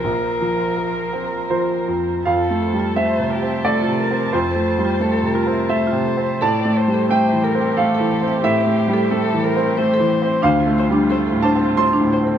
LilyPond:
<<
  \new Staff \with { instrumentName = "Violin" } { \time 3/4 \key f \major \tempo 4 = 88 bes'2~ bes'8 r8 | a'4 c''8 g'8 a'8 bes'8 | c''4 a'8 bes'8 c''4 | d''8 c''8 c''8 bes'8 a'4 |
g'4 a'8 bes'8 c''4 | c''8 c''8 c''8 c''8 c''8 c''8 | }
  \new Staff \with { instrumentName = "Marimba" } { \time 3/4 \key f \major r2. | f'16 a'16 a'16 f'16 c''16 c''16 f'16 e''16 a'16 f'16 a'16 c''16 | f'16 a'16 a'16 f'16 c''16 c''16 f'16 e''16 a'16 f'16 a'16 c''16 | a'16 c''16 c''16 a'16 e''16 e''16 a'16 g''16 c''16 a'16 c''16 e''16 |
a'16 c''16 c''16 a'16 e''16 e''16 a'16 g''16 c''16 a'16 c''16 e''16 | d'16 f'16 f'16 d'16 a'16 a'16 d'16 c''16 f'16 d'16 f'16 a'16 | }
  \new Staff \with { instrumentName = "String section" } { \time 3/4 \key f \major << { c''2. | c''2.~ | c''2. | c''2.~ |
c''2.~ | c''2. | } \\ { <f bes'>2. | <e a''>2.~ | <e a''>2. | <e g'>2.~ |
<e g'>2. | <a f'>2. | } >> }
  \new Staff \with { instrumentName = "Grand piano" } { \time 3/4 \key f \major r2 c''4 | f''4 e''4 d''4 | c''4. r8 e''4 | a''4 g''4 f''4 |
e''4. r4. | f''4. a''8 c'''4 | }
  \new Staff \with { instrumentName = "Grand piano" } { \time 3/4 \key f \major bes,,8 f8 bes'8 c'8 f8 f,8 | \tuplet 3/2 { f,8 a8 g8 a8 c8 c'8 a8 c8 c'8 } | \tuplet 3/2 { f,8 a8 g8 a8 c8 c'8 a8 c8 c'8 } | \tuplet 3/2 { a,8 a8 g8 a8 e8 c'8 a8 e8 c'8 } |
\tuplet 3/2 { a,8 a8 g8 a8 e8 c'8 a8 e8 c'8 } | \tuplet 3/2 { d,8 a8 g8 a8 a,8 c'8 a8 a,8 c'8 } | }
>>